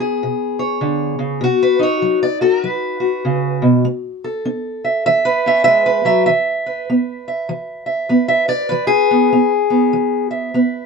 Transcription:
Already playing: G#3 B3
0.00 G#4
0.23 B2
0.59 C#5
0.81 D3
1.19 C#3
1.41 B2 F#4
1.63 B4
1.79 D#4 C#5
2.02 F#3
2.23 D5
2.41 F#4 A#4
2.64 F#3 B4
3.00 F#4
3.25 C#3
3.62 B2
3.85 A3
4.24 A4
4.45 C#4
4.84 E5
5.06 E3 E5
5.25 B4
5.46 C#4 E5
5.64 G#3 E5
5.86 B4
6.05 F#3 E5
6.26 E3 E5
6.66 B4
6.90 B3
7.28 E5
7.49 E3
7.86 E5
8.09 B3 B4
8.28 E5
8.48 B4 D5
8.69 E3 B4
8.87 G#4
9.11 B3
9.33 B3
9.70 B3
9.93 E3
10.31 E5
10.54 B3 B4

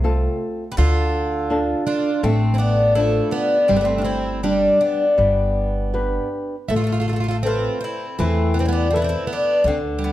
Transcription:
Already playing: C2 A3 C4
0.04 C4 F4 A4
0.72 G4 B4
0.77 D2 D3 F4 A4
1.50 D4 F4 A4
1.87 D4 F4
2.23 A1 A3 C4
2.54 C4 E4
2.58 B3 D4
2.95 F3 A3 D4 E4 A4
3.31 B3 D4
3.68 G1 G3 C4
3.76 B3 D4
3.81 A3 C4
3.98 D4 F4
4.04 C4 E4
4.43 G3 D4 G4 D5
4.81 B3 D4
5.18 G1 G3
5.94 D4 G4 B4
6.69 A1 A3 E4 A4
6.76 F4 A4
6.84 F4 A4
6.92 F4 A4
7.00 F4 A4
7.08 F4 A4
7.13 F4 A4
7.20 F4 A4
7.29 F4 A4
7.43 C4 F4 A4 B4 C5
7.81 C4 E4
8.19 E2 E3 A3 C4
8.54 B3
8.59 C4 D4
8.65 B3 E4
8.72 D4
8.91 C4 A4 B4 E5
8.96 B3 E4
9.02 C4 D4
9.09 E4
9.27 B3
9.33 D4
9.64 D2 D3 A3 C4
9.99 G3
10.04 B3

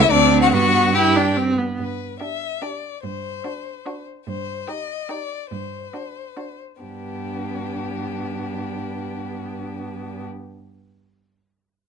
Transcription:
Already playing: C#2
0.00 E4 E5
0.11 D2 C4 D4 D5
0.42 F#4 F#5
0.52 G2 B3 F#4 F#5
0.94 E4 G4 G5
1.16 D4
1.37 C4
1.58 B3
1.79 G2 B4
2.20 D4 G4 E5
2.62 D4 G4 D5
3.03 G2 C5
3.45 D4 F#4
3.86 D4 F#4
4.26 G2 C5
4.68 D#4 G4 D#5
5.09 D#4 G4 D5
5.51 G2 C5
5.93 D4 F#4
6.37 D4 F#4
6.81 G2 B3 D4 G4

